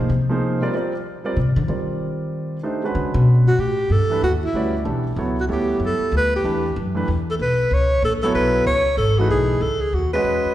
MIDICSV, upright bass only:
0, 0, Header, 1, 3, 480
1, 0, Start_track
1, 0, Tempo, 317460
1, 1108, Time_signature, 3, 2, 24, 8
1, 15943, End_track
2, 0, Start_track
2, 0, Title_t, "Upright bass"
2, 0, Program_c, 0, 32
2, 144, Note_on_c, 0, 48, 83
2, 871, Note_off_c, 0, 48, 0
2, 2063, Note_on_c, 0, 48, 82
2, 2354, Note_off_c, 0, 48, 0
2, 2363, Note_on_c, 0, 50, 91
2, 2534, Note_off_c, 0, 50, 0
2, 2543, Note_on_c, 0, 51, 83
2, 3920, Note_off_c, 0, 51, 0
2, 4457, Note_on_c, 0, 50, 87
2, 4743, Note_off_c, 0, 50, 0
2, 4752, Note_on_c, 0, 47, 96
2, 5285, Note_off_c, 0, 47, 0
2, 5416, Note_on_c, 0, 45, 73
2, 5883, Note_off_c, 0, 45, 0
2, 5894, Note_on_c, 0, 43, 88
2, 6361, Note_off_c, 0, 43, 0
2, 6379, Note_on_c, 0, 39, 85
2, 6844, Note_off_c, 0, 39, 0
2, 6852, Note_on_c, 0, 38, 74
2, 7320, Note_off_c, 0, 38, 0
2, 7338, Note_on_c, 0, 35, 86
2, 7798, Note_off_c, 0, 35, 0
2, 7807, Note_on_c, 0, 37, 87
2, 8278, Note_off_c, 0, 37, 0
2, 8293, Note_on_c, 0, 38, 73
2, 8754, Note_off_c, 0, 38, 0
2, 8763, Note_on_c, 0, 42, 83
2, 9048, Note_off_c, 0, 42, 0
2, 9248, Note_on_c, 0, 38, 91
2, 9719, Note_off_c, 0, 38, 0
2, 9738, Note_on_c, 0, 40, 77
2, 10204, Note_off_c, 0, 40, 0
2, 10224, Note_on_c, 0, 42, 91
2, 10688, Note_off_c, 0, 42, 0
2, 10703, Note_on_c, 0, 40, 84
2, 11168, Note_off_c, 0, 40, 0
2, 11179, Note_on_c, 0, 35, 75
2, 11646, Note_off_c, 0, 35, 0
2, 11653, Note_on_c, 0, 37, 86
2, 12124, Note_off_c, 0, 37, 0
2, 12134, Note_on_c, 0, 34, 87
2, 12604, Note_off_c, 0, 34, 0
2, 12621, Note_on_c, 0, 35, 78
2, 13089, Note_off_c, 0, 35, 0
2, 13096, Note_on_c, 0, 37, 90
2, 13553, Note_off_c, 0, 37, 0
2, 13563, Note_on_c, 0, 32, 91
2, 14041, Note_off_c, 0, 32, 0
2, 14052, Note_on_c, 0, 35, 75
2, 14520, Note_off_c, 0, 35, 0
2, 14529, Note_on_c, 0, 37, 87
2, 15001, Note_off_c, 0, 37, 0
2, 15010, Note_on_c, 0, 39, 83
2, 15480, Note_off_c, 0, 39, 0
2, 15489, Note_on_c, 0, 40, 73
2, 15779, Note_off_c, 0, 40, 0
2, 15943, End_track
3, 0, Start_track
3, 0, Title_t, "Muted upright bass strokes"
3, 9067, Note_on_c, 9, 29, 38
3, 9218, Note_off_c, 9, 29, 0
3, 15802, Note_on_c, 9, 29, 38
3, 15943, Note_off_c, 9, 29, 0
3, 15943, End_track
0, 0, End_of_file